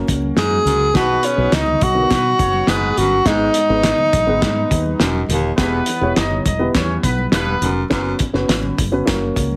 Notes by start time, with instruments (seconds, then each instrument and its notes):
Already playing: upright piano A#3 C#4 F#4 A#4
0.08 fingered electric bass C#2, kick, closed hi-hat, muted conga
0.22 high conga
0.37 fingered electric bass F#2, baritone saxophone G#2, tenor saxophone G#4, snare, closed hi-hat, muted conga
0.50 high conga
0.65 fingered electric bass C#2, baritone saxophone F#2, closed hi-hat, muted conga, low conga
0.94 fingered electric bass B1, baritone saxophone B2, upright piano B2 B3 D#4 F#4 B4, horn section B3 B4, tenor saxophone F#4, kick, snare, closed hi-hat, muted conga
1.23 tenor saxophone C#4, closed hi-hat
1.37 fingered electric bass B1, upright piano B3 D#4 F#4 B4
1.52 fingered electric bass C#2, horn section D#4 D#5, tenor saxophone D#4, snare, closed hi-hat, muted conga
1.66 high conga, low conga
1.81 fingered electric bass B1, horn section D#4 D#5, tenor saxophone F#4, kick, closed hi-hat, muted conga, high conga
1.95 upright piano B3 D#4 F#4 A#4, low conga
2.03 upright piano B4
2.10 fingered electric bass B2, horn section B3 B4, kick, snare, closed hi-hat, high conga
2.38 fingered electric bass F#1, horn section C#4 C#5, kick, closed hi-hat, muted conga
2.53 high conga
2.67 fingered electric bass F#1, baritone saxophone G#2, horn section B3 B4, tenor saxophone G#4, snare, closed hi-hat
2.81 high conga
2.97 fingered electric bass G1, baritone saxophone F#2, tenor saxophone F#4, closed hi-hat, low conga
3.25 fingered electric bass G#1, upright piano G#2 B3 D#4 G#4 B4, baritone saxophone G#2, tenor saxophone D#4, kick, snare, closed hi-hat, muted conga
3.54 closed hi-hat, muted conga
3.70 fingered electric bass G#1, upright piano B3 D#4 G#4 B4
3.83 snare, closed hi-hat
3.98 high conga, low conga
4.13 fingered electric bass A#1, kick, closed hi-hat, muted conga, high conga
4.27 fingered electric bass G#1, upright piano B3 D#4 G#4 B4, low conga
4.42 fingered electric bass G#2, kick, snare, closed hi-hat, muted conga, high conga
4.71 fingered electric bass D#2, kick, closed hi-hat
4.86 high conga
5.00 fingered electric bass E1, baritone saxophone F#2, snare, closed hi-hat, muted conga
5.14 high conga
5.28 fingered electric bass D#1, baritone saxophone D#2, closed hi-hat, muted conga, low conga
5.57 fingered electric bass E1, baritone saxophone E2, upright piano E3 B3 E4 G4 B4, horn section B3 B4, kick, snare, closed hi-hat, muted conga
5.86 closed hi-hat, muted conga
6.01 fingered electric bass E1, upright piano B3 E4 G4 C#5
6.16 fingered electric bass F#1, horn section D#4 D#5, snare, closed hi-hat
6.31 high conga, low conga
6.45 fingered electric bass E1, horn section D#4 D#5, kick, closed hi-hat, high conga
6.59 upright piano B3 E4 G4 B4, low conga
6.74 fingered electric bass E2, horn section C#4 C#5, kick, snare, closed hi-hat, muted conga, high conga
7.03 fingered electric bass B1, horn section B3 B4, kick, closed hi-hat
7.18 high conga
7.32 fingered electric bass E1, baritone saxophone G2, horn section B3 B4, snare, closed hi-hat, muted conga
7.46 high conga
7.61 fingered electric bass F1, baritone saxophone F#2, closed hi-hat, muted conga, low conga
7.90 fingered electric bass F#1, baritone saxophone F#2, upright piano B3 C#4 F#4 B4, kick, snare, closed hi-hat, muted conga
8.19 kick, closed hi-hat, muted conga
8.33 fingered electric bass F#1, upright piano B3 C#4 F#4 B4, snare
8.48 fingered electric bass G#1, snare, closed hi-hat
8.63 high conga, low conga
8.78 fingered electric bass F#1, kick, closed hi-hat, high conga
8.92 upright piano B3 C#4 F#4 B4, low conga
9.05 fingered electric bass F#1, upright piano A#3 C#4 F#4 A#4, kick, snare, closed hi-hat, muted conga, high conga
9.36 fingered electric bass C#2, kick, closed hi-hat
9.51 high conga